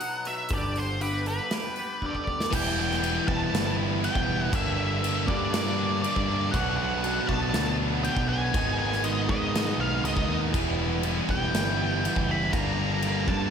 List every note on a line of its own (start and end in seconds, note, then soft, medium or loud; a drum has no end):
0.00 0.48 B2 medium
0.00 0.49 F#3 medium
0.00 0.28 B3 medium
0.00 0.25 D#4 medium
0.00 0.24 F#4 medium
0.00 0.27 F#5 loud
0.00 open hi-hat medium
0.25 0.51 B3 medium
0.25 0.49 D#4 medium
0.25 0.49 F#4 medium
0.25 0.52 E5 medium
0.25 open hi-hat soft
0.49 1.38 G1 medium
0.49 0.99 G2 medium
0.49 0.99 D3 medium
0.49 0.77 G3 medium
0.49 0.76 B3 medium
0.49 0.75 D4 medium
0.49 0.74 G4 medium
0.49 kick loud
0.49 open hi-hat medium
0.54 0.78 D5 medium
0.75 1.00 G3 soft
0.75 1.01 B3 medium
0.75 1.01 D4 medium
0.75 1.01 G4 medium
0.75 1.02 C5 medium
0.75 open hi-hat soft
1.00 1.51 G2 medium
1.00 1.51 D3 medium
1.00 1.27 G3 medium
1.00 1.26 B3 medium
1.00 1.25 D4 medium
1.00 1.24 G4 medium
1.00 1.25 B4 medium
1.00 open hi-hat medium
1.25 1.49 G3 medium
1.25 1.50 B3 medium
1.25 1.51 D4 medium
1.25 1.52 G4 medium
1.25 2.24 B4 medium
1.25 open hi-hat soft
1.50 1.78 G3 medium
1.50 1.77 B3 medium
1.50 1.77 D4 medium
1.50 1.76 G4 medium
1.50 snare loud
1.50 open hi-hat medium
1.76 2.02 G3 medium
1.76 2.02 B3 medium
1.76 2.03 D4 medium
1.76 2.04 G4 medium
1.76 open hi-hat soft
2.02 2.51 G2 medium
2.02 2.51 D3 medium
2.02 2.27 G3 medium
2.02 2.27 B3 medium
2.02 2.26 D4 medium
2.02 2.25 G4 medium
2.02 kick medium
2.06 2.56 D5 medium
2.15 kick soft
2.26 2.52 G3 medium
2.26 2.51 B3 medium
2.26 2.51 D4 medium
2.26 2.50 G4 medium
2.26 kick medium
2.40 snare medium
2.52 3.18 E1 loud
2.52 2.99 E3 medium
2.52 2.80 G3 medium
2.52 2.78 B3 loud
2.52 2.75 E4 loud
2.52 2.79 G5 loud
2.52 kick loud
2.52 crash loud
2.52 crash medium
2.77 3.02 G3 medium
2.77 3.02 B3 medium
2.77 3.03 E4 medium
2.77 3.26 G5 loud
2.91 snare soft
3.00 3.52 E3 loud
3.00 3.30 G3 loud
3.00 3.28 B3 loud
3.00 3.25 E4 loud
3.00 crash medium
3.27 3.50 E1 loud
3.27 4.02 G3 medium
3.27 4.03 B3 medium
3.27 4.04 E4 medium
3.27 3.75 A5 loud
3.27 kick medium
3.53 4.07 G1 medium
3.53 snare loud
3.53 crash medium
3.78 4.03 G3 medium
3.78 4.03 B3 medium
3.78 4.04 E4 medium
4.02 4.51 E3 medium
4.02 4.29 G3 medium
4.02 4.27 B3 medium
4.02 4.25 E4 medium
4.02 4.43 G5 medium
4.02 crash medium
4.15 4.48 E1 medium
4.15 kick medium
4.26 4.52 G3 medium
4.26 4.52 B3 medium
4.26 4.51 E4 medium
4.43 4.56 F#5 medium
4.52 5.29 G1 medium
4.52 5.01 G2 loud
4.52 5.02 D3 loud
4.52 4.79 G3 loud
4.52 4.77 A#3 loud
4.52 4.76 D4 loud
4.52 5.27 E5 medium
4.52 kick loud
4.52 crash medium
4.77 5.03 G3 medium
4.77 5.04 A#3 medium
4.77 5.05 D4 medium
5.02 5.53 G2 loud
5.02 5.54 D3 loud
5.02 5.30 G3 loud
5.02 5.28 A#3 loud
5.02 5.27 D4 loud
5.02 crash medium
5.27 6.04 G2 loud
5.27 6.03 G3 medium
5.27 6.04 A#3 medium
5.27 6.05 D4 medium
5.27 5.52 D5 medium
5.27 kick medium
5.53 6.01 D5 medium
5.53 snare loud
5.53 crash medium
5.77 6.03 G3 medium
5.77 6.03 A#3 medium
5.77 6.04 D4 medium
6.02 6.51 G2 medium
6.02 6.52 D3 medium
6.02 6.30 G3 medium
6.02 6.29 A#3 medium
6.02 6.54 D5 medium
6.02 crash medium
6.06 6.27 D4 medium
6.16 6.49 G2 medium
6.16 kick medium
6.28 6.54 G3 medium
6.28 6.53 A#3 medium
6.28 6.52 D4 medium
6.51 7.19 B1 loud
6.51 7.02 B2 loud
6.51 6.81 F#3 loud
6.51 6.76 F#5 loud
6.51 kick loud
6.51 crash medium
6.57 6.80 B3 loud
6.57 6.77 D4 loud
6.77 7.06 B3 medium
6.77 7.06 D4 medium
6.77 7.28 F#5 loud
6.83 7.03 F#3 medium
7.03 7.54 B2 loud
7.03 7.31 F#3 loud
7.03 7.31 B3 loud
7.03 7.28 D4 loud
7.03 crash medium
7.28 7.50 B1 loud
7.28 8.06 B3 medium
7.28 8.07 D4 medium
7.28 7.75 A5 loud
7.28 kick medium
7.33 8.05 F#3 medium
7.54 8.08 D2 loud
7.54 snare loud
7.54 crash medium
7.78 8.03 F#3 medium
7.78 8.04 B3 medium
7.78 8.04 D4 medium
8.04 8.52 B2 medium
8.04 8.31 F#3 medium
8.04 8.30 B3 medium
8.04 8.27 D4 medium
8.04 8.28 G5 loud
8.04 crash medium
8.16 8.49 B1 medium
8.16 kick medium
8.28 8.54 F#3 medium
8.28 8.57 B3 medium
8.28 8.52 D4 medium
8.28 8.78 G#5 loud
8.54 9.31 G#1 loud
8.54 9.03 G#2 medium
8.54 9.04 D#3 loud
8.54 8.82 G#3 loud
8.54 8.81 B3 loud
8.54 kick loud
8.54 crash medium
8.58 8.78 D#4 loud
8.79 9.06 B3 medium
8.79 9.06 D#4 medium
8.79 9.05 G#5 loud
8.83 9.04 G#3 medium
8.93 snare soft
9.04 9.54 G#2 loud
9.04 9.54 D#3 loud
9.04 9.31 G#3 loud
9.04 9.30 B3 loud
9.04 9.27 D#4 loud
9.04 9.29 D#5 medium
9.04 crash medium
9.28 9.72 G#2 loud
9.28 10.05 B3 medium
9.28 10.07 D#4 medium
9.28 9.76 D#5 loud
9.28 kick medium
9.32 10.04 G#3 medium
9.55 snare loud
9.55 crash medium
9.77 10.01 B1 medium
9.77 10.04 G#3 medium
9.77 10.04 B3 medium
9.77 10.04 D#4 medium
9.77 10.05 F5 medium
10.03 10.26 C#2 medium
10.03 10.52 G#2 medium
10.03 10.52 D#3 medium
10.03 10.31 G#3 medium
10.03 10.39 D#5 medium
10.03 crash medium
10.07 10.30 B3 medium
10.07 10.28 D#4 medium
10.17 kick medium
10.29 10.51 D#2 medium
10.29 10.54 G#3 medium
10.29 10.53 B3 medium
10.29 10.52 D#4 medium
10.54 11.19 E1 loud
10.54 11.04 E3 medium
10.54 10.82 G3 medium
10.54 10.80 B3 loud
10.54 10.78 E4 loud
10.54 kick loud
10.54 crash medium
10.79 11.06 G3 medium
10.79 11.06 B3 medium
10.79 11.08 E4 medium
11.03 11.54 E3 loud
11.03 11.32 G3 loud
11.03 crash medium
11.08 11.30 B3 loud
11.08 11.28 E4 loud
11.29 11.50 E1 loud
11.29 12.03 G3 medium
11.29 12.04 B3 medium
11.29 12.06 E4 medium
11.29 12.32 G5 loud
11.29 kick medium
11.53 12.08 G1 loud
11.53 snare loud
11.53 crash medium
11.77 12.03 G3 medium
11.77 12.03 B3 medium
11.77 12.05 E4 medium
12.03 12.52 E3 medium
12.03 12.31 G3 medium
12.03 12.30 B3 medium
12.03 12.27 E4 medium
12.03 crash medium
12.16 12.49 F#1 medium
12.16 kick medium
12.29 12.54 G3 medium
12.29 12.53 B3 medium
12.29 12.52 E4 medium
12.29 12.53 B5 loud
12.53 13.29 G1 loud
12.53 13.03 G2 loud
12.53 13.04 D3 loud
12.53 12.82 G3 loud
12.53 12.80 A#3 loud
12.53 13.30 A#5 loud
12.53 kick loud
12.53 crash medium
12.57 12.79 D4 loud
12.79 13.05 G3 medium
12.79 13.06 A#3 medium
12.79 13.07 D4 medium
13.02 13.50 G2 loud
13.02 13.50 D3 loud
13.02 13.31 G3 loud
13.02 crash medium
13.07 13.30 A#3 loud
13.07 13.28 D4 loud
13.27 13.50 G2 loud
13.27 13.50 A#3 medium
13.27 13.50 D4 medium
13.27 13.50 A5 loud
13.27 kick medium
13.32 13.50 G3 medium